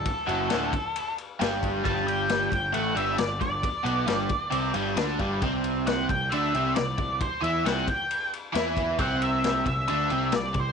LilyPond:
<<
  \new Staff \with { instrumentName = "Lead electric guitar" } { \time 4/4 \key c \lydian \tempo 4 = 134 a'2~ a'8 r4. | a''8 g''4 g''8 fis''8 e''8 d''8 d''8~ | d''2~ d''8 r4. | r4 fis''8 g''8 e''4 d''4 |
c''8 e''8 fis''8 g''4 r4. | fis''8 e''4 e''4. d''8 c''8 | }
  \new Staff \with { instrumentName = "Overdriven electric guitar" } { \clef bass \time 4/4 \key c \lydian r8 <fis, fis>8 <d, d>8 r4. <g, g>4 | <g, g>4. g,8 <a, a>8 <g, g>8 g,8 g,8 | r8 <b, b>8 <g, g>8 r8 <c c'>8 <g, g>8 <d d'>8 <g, g>8 | <c c'>4. c8 <d d'>8 <c c'>8 c8 c8 |
r8 <e e'>8 <c c'>8 r4. <e e'>4 | <c c'>4. c8 <d d'>8 <c c'>8 c8 c8 | }
  \new Staff \with { instrumentName = "Picked electric bass" } { \clef bass \time 4/4 \key c \lydian r8 fis,,8 d,,8 r4. g,,4 | g,,4. g,,8 a,,8 g,,8 g,,8 g,,8 | r8 b,,8 g,,8 r8 c,8 g,,8 d,8 g,,8 | c,4. c,8 d,8 c,8 c,8 c,8 |
r8 e,8 c,8 r4. e,4 | c,4. c,8 d,8 c,8 c,8 c,8 | }
  \new DrumStaff \with { instrumentName = "Drums" } \drummode { \time 4/4 <bd cymr>8 cymr8 <cymr sn>8 <bd cymr>8 cymr8 cymr8 <cymr sn>8 <bd cymr>8 | <bd cymr>8 cymr8 <cymr sn>8 <bd cymr>8 cymr8 cymr8 <cymr sn>8 <bd cymr>8 | <bd cymr>8 cymr8 <cymr sn>8 <bd cymr>8 cymr8 cymr8 <cymr sn>8 <bd cymr>8 | <bd cymr>8 cymr8 <cymr sn>8 <bd cymr>8 cymr8 cymr8 <cymr sn>8 <bd cymr>8 |
<bd cymr>8 cymr8 <cymr sn>8 <bd cymr>8 cymr8 cymr8 <cymr sn>8 <bd cymr>8 | <bd cymr>8 cymr8 <cymr sn>8 <bd cymr>8 cymr8 cymr8 <cymr sn>8 <bd cymr>8 | }
>>